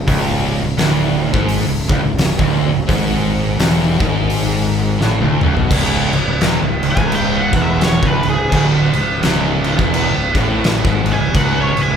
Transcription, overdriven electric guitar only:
0.07 C#2
0.64 C#2
0.77 D2
1.34 G#2
1.69 C#2
1.89 C#2
2.03 C#2
2.18 C#2
2.39 D2
2.74 C#2
2.88 G#2
3.59 E2
4.01 G#2
5.01 A2
5.21 D2
5.43 C#2
5.57 B2
5.72 C#2
6.13 C#2
6.28 C#2
6.42 E2
6.63 C#2
6.83 C#2
6.97 C#2
7.53 E2
8.02 C#2
8.25 C#2
8.53 D2
8.95 C#2
9.25 C#2
9.79 E2
10.15 C#2
10.37 A2
10.87 G#2
11.21 C#2
11.35 C#2
11.76 C#2
11.91 C#2

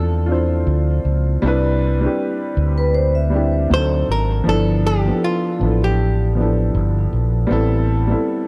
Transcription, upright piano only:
Already playing: F3 C4 D4 E4 F4 A4
0.26 C4 D4 F4
0.30 E4 C5
1.42 G3 C4 D4
1.46 E4 B4
2.01 G3 C4 D4 E4
2.06 G4
3.30 G3 C4 D4 E4
3.35 G4
3.70 F#3 C4 D4
3.74 D#4 A4
4.44 F3 B3 D4
4.48 E4 A4
5.06 F3 B3 D4
5.10 E4 A4
5.59 F3 B3 D4
5.63 E4 A4
6.35 F3 B3 D4
6.39 E4 A4
7.47 G3 B3 C4
7.51 E4 A4
8.07 G3 B3 C4
8.11 E4 A4

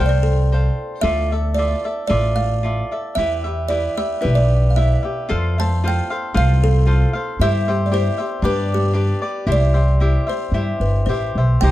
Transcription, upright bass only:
0.00 C2
1.03 D2
2.10 A1
3.17 E2
4.25 B1
5.31 F2
6.36 C2
7.40 G2
8.43 G2
9.47 C2
10.52 G2
10.80 G1
11.07 A1
11.35 B1
11.62 C2

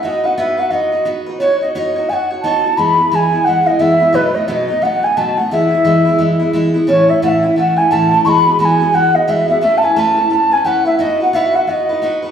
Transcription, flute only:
0.03 D#5
0.25 F#5
0.37 E5
0.59 F#5
0.70 D#5
1.39 C#5
1.61 D#5
1.75 D#5
2.09 G#5
2.13 F#5
2.42 A5
2.77 B5
3.10 B5
3.15 G#5
3.44 F#5
3.67 D#5
3.80 E5
4.14 B4
4.34 D#5
4.49 D#5
4.83 F#5
5.04 G#5
5.17 A5
5.37 F#5
5.51 E5
6.89 C#5
7.09 E5
7.23 F#5
7.28 E5
7.58 F#5
7.77 G#5
7.91 A5
8.25 B5 C#6
8.61 G#5 B5
8.94 F#5
9.15 D#5
9.29 E5
9.49 E5
9.62 E5
9.77 A5
9.84 G#5
9.98 A5
10.33 A5
10.53 G#5
10.65 F#5
10.86 E5
10.99 D#5
11.22 F#5
11.35 E5
11.55 F#5
11.68 D#5

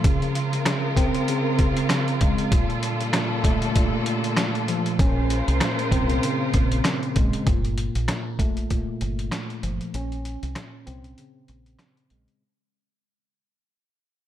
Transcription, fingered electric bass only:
4.99 A#1
5.48 C2
5.92 C2
6.54 A#1
7.16 A#1
7.47 G1
7.96 A#1
8.39 A#1
9.02 G1
9.63 G1
9.94 A#1
10.43 C2
10.87 C2
11.49 A#1
12.11 A#1

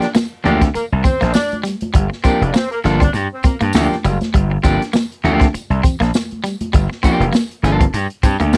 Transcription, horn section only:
0.00 D4 D5
0.44 D4 D5
0.75 A#3 A#4
1.04 C4 C5
1.33 D4 D5
2.25 A#3 A#4
2.42 D4 D5
2.54 C4 C5
2.71 A#3 A#4
3.01 D4 D5
3.33 C4 C5
3.45 A#3 A#4

